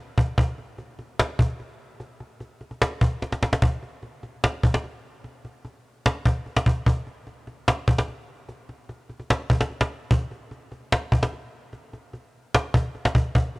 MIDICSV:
0, 0, Header, 1, 2, 480
1, 0, Start_track
1, 0, Tempo, 405405
1, 446, Time_signature, 4, 2, 24, 8
1, 16096, End_track
2, 0, Start_track
2, 0, Title_t, "Cajon"
2, 209, Note_on_c, 9, 36, 96
2, 327, Note_off_c, 9, 36, 0
2, 448, Note_on_c, 9, 36, 115
2, 566, Note_off_c, 9, 36, 0
2, 689, Note_on_c, 9, 38, 34
2, 807, Note_off_c, 9, 38, 0
2, 926, Note_on_c, 9, 38, 43
2, 1045, Note_off_c, 9, 38, 0
2, 1168, Note_on_c, 9, 38, 45
2, 1287, Note_off_c, 9, 38, 0
2, 1414, Note_on_c, 9, 38, 115
2, 1533, Note_off_c, 9, 38, 0
2, 1647, Note_on_c, 9, 36, 100
2, 1765, Note_off_c, 9, 36, 0
2, 1891, Note_on_c, 9, 38, 43
2, 2009, Note_off_c, 9, 38, 0
2, 2367, Note_on_c, 9, 38, 40
2, 2486, Note_off_c, 9, 38, 0
2, 2608, Note_on_c, 9, 38, 34
2, 2727, Note_off_c, 9, 38, 0
2, 2846, Note_on_c, 9, 38, 45
2, 2965, Note_off_c, 9, 38, 0
2, 3087, Note_on_c, 9, 38, 27
2, 3205, Note_off_c, 9, 38, 0
2, 3207, Note_on_c, 9, 38, 47
2, 3326, Note_off_c, 9, 38, 0
2, 3334, Note_on_c, 9, 38, 115
2, 3452, Note_off_c, 9, 38, 0
2, 3567, Note_on_c, 9, 36, 102
2, 3685, Note_off_c, 9, 36, 0
2, 3811, Note_on_c, 9, 38, 45
2, 3816, Note_off_c, 9, 38, 0
2, 3816, Note_on_c, 9, 38, 57
2, 3934, Note_off_c, 9, 38, 0
2, 3936, Note_on_c, 9, 38, 65
2, 4054, Note_off_c, 9, 38, 0
2, 4056, Note_on_c, 9, 38, 94
2, 4174, Note_off_c, 9, 38, 0
2, 4176, Note_on_c, 9, 38, 93
2, 4288, Note_on_c, 9, 36, 122
2, 4294, Note_off_c, 9, 38, 0
2, 4406, Note_off_c, 9, 36, 0
2, 4529, Note_on_c, 9, 38, 36
2, 4647, Note_off_c, 9, 38, 0
2, 4766, Note_on_c, 9, 38, 44
2, 4885, Note_off_c, 9, 38, 0
2, 5008, Note_on_c, 9, 38, 46
2, 5126, Note_off_c, 9, 38, 0
2, 5254, Note_on_c, 9, 38, 122
2, 5373, Note_off_c, 9, 38, 0
2, 5487, Note_on_c, 9, 36, 111
2, 5605, Note_off_c, 9, 36, 0
2, 5614, Note_on_c, 9, 38, 100
2, 5730, Note_off_c, 9, 38, 0
2, 5730, Note_on_c, 9, 38, 45
2, 5849, Note_off_c, 9, 38, 0
2, 6207, Note_on_c, 9, 38, 42
2, 6325, Note_off_c, 9, 38, 0
2, 6449, Note_on_c, 9, 38, 37
2, 6567, Note_off_c, 9, 38, 0
2, 6686, Note_on_c, 9, 38, 43
2, 6804, Note_off_c, 9, 38, 0
2, 7173, Note_on_c, 9, 38, 121
2, 7292, Note_off_c, 9, 38, 0
2, 7406, Note_on_c, 9, 36, 107
2, 7524, Note_off_c, 9, 36, 0
2, 7650, Note_on_c, 9, 38, 46
2, 7769, Note_off_c, 9, 38, 0
2, 7773, Note_on_c, 9, 38, 99
2, 7888, Note_on_c, 9, 36, 100
2, 7891, Note_off_c, 9, 38, 0
2, 8007, Note_off_c, 9, 36, 0
2, 8127, Note_on_c, 9, 36, 118
2, 8245, Note_off_c, 9, 36, 0
2, 8368, Note_on_c, 9, 38, 36
2, 8487, Note_off_c, 9, 38, 0
2, 8606, Note_on_c, 9, 38, 46
2, 8724, Note_off_c, 9, 38, 0
2, 8847, Note_on_c, 9, 38, 45
2, 8965, Note_off_c, 9, 38, 0
2, 9092, Note_on_c, 9, 38, 123
2, 9211, Note_off_c, 9, 38, 0
2, 9326, Note_on_c, 9, 36, 108
2, 9445, Note_off_c, 9, 36, 0
2, 9454, Note_on_c, 9, 38, 97
2, 9571, Note_off_c, 9, 38, 0
2, 9571, Note_on_c, 9, 38, 43
2, 9689, Note_off_c, 9, 38, 0
2, 10047, Note_on_c, 9, 38, 40
2, 10165, Note_off_c, 9, 38, 0
2, 10289, Note_on_c, 9, 38, 37
2, 10407, Note_off_c, 9, 38, 0
2, 10526, Note_on_c, 9, 38, 46
2, 10645, Note_off_c, 9, 38, 0
2, 10767, Note_on_c, 9, 38, 28
2, 10885, Note_off_c, 9, 38, 0
2, 10887, Note_on_c, 9, 38, 46
2, 11005, Note_off_c, 9, 38, 0
2, 11014, Note_on_c, 9, 38, 118
2, 11132, Note_off_c, 9, 38, 0
2, 11247, Note_on_c, 9, 36, 110
2, 11365, Note_off_c, 9, 36, 0
2, 11374, Note_on_c, 9, 38, 99
2, 11490, Note_off_c, 9, 38, 0
2, 11490, Note_on_c, 9, 38, 43
2, 11609, Note_off_c, 9, 38, 0
2, 11613, Note_on_c, 9, 38, 102
2, 11731, Note_off_c, 9, 38, 0
2, 11967, Note_on_c, 9, 36, 122
2, 12086, Note_off_c, 9, 36, 0
2, 12209, Note_on_c, 9, 38, 38
2, 12327, Note_off_c, 9, 38, 0
2, 12445, Note_on_c, 9, 38, 44
2, 12564, Note_off_c, 9, 38, 0
2, 12688, Note_on_c, 9, 38, 46
2, 12806, Note_off_c, 9, 38, 0
2, 12933, Note_on_c, 9, 38, 118
2, 13051, Note_off_c, 9, 38, 0
2, 13166, Note_on_c, 9, 36, 104
2, 13285, Note_off_c, 9, 36, 0
2, 13293, Note_on_c, 9, 38, 99
2, 13410, Note_off_c, 9, 38, 0
2, 13410, Note_on_c, 9, 38, 45
2, 13528, Note_off_c, 9, 38, 0
2, 13886, Note_on_c, 9, 38, 42
2, 14005, Note_off_c, 9, 38, 0
2, 14129, Note_on_c, 9, 38, 38
2, 14248, Note_off_c, 9, 38, 0
2, 14367, Note_on_c, 9, 38, 45
2, 14485, Note_off_c, 9, 38, 0
2, 14854, Note_on_c, 9, 38, 115
2, 14972, Note_off_c, 9, 38, 0
2, 15086, Note_on_c, 9, 36, 111
2, 15205, Note_off_c, 9, 36, 0
2, 15330, Note_on_c, 9, 38, 45
2, 15449, Note_off_c, 9, 38, 0
2, 15454, Note_on_c, 9, 38, 101
2, 15569, Note_on_c, 9, 36, 101
2, 15572, Note_off_c, 9, 38, 0
2, 15687, Note_off_c, 9, 36, 0
2, 15808, Note_on_c, 9, 36, 117
2, 15926, Note_off_c, 9, 36, 0
2, 16049, Note_on_c, 9, 38, 36
2, 16096, Note_off_c, 9, 38, 0
2, 16096, End_track
0, 0, End_of_file